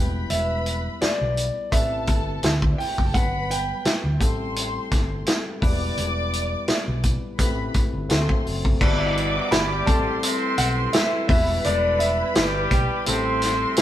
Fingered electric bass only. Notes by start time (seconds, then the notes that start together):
Already playing: E1
0.30 E1
1.02 muted fingered electric bass stroke
1.21 B1
1.72 A1
2.08 G1
2.43 D2
2.98 F#1
3.15 G1
3.85 muted fingered electric bass stroke
4.04 D2
4.21 A1
4.92 G1
5.62 E1
5.97 E1
6.69 muted fingered electric bass stroke
6.88 B1
7.39 A1
7.93 G1
8.11 D2
8.46 F#1
8.81 G1
9.52 G1
9.88 A1
10.58 B1
11.29 E1
11.65 E1
12.37 G1
12.71 B1
13.08 A1